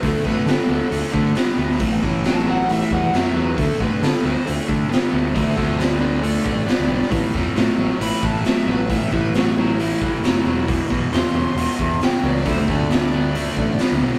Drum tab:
HH |o---o---o---o---|o---o---o---o---|o---o---o---o---|o---o---o---o---|
SD |--o-o-------o--o|----o-------o---|----o-------o---|--o-o-------o--o|
BD |o-o-------o-----|o-o-------o-----|o-o-------o-----|o-o-------o-----|

HH |o---o---o---o---|o---o---o---o---|o---o---o---o---|o---o---o---o---|
SD |--o-o-------o---|----o-------o---|----o-------o--o|--o-o-------o--o|
BD |o-o-------o-----|o-o-------o-----|o-o-------o-----|o-o-------o-----|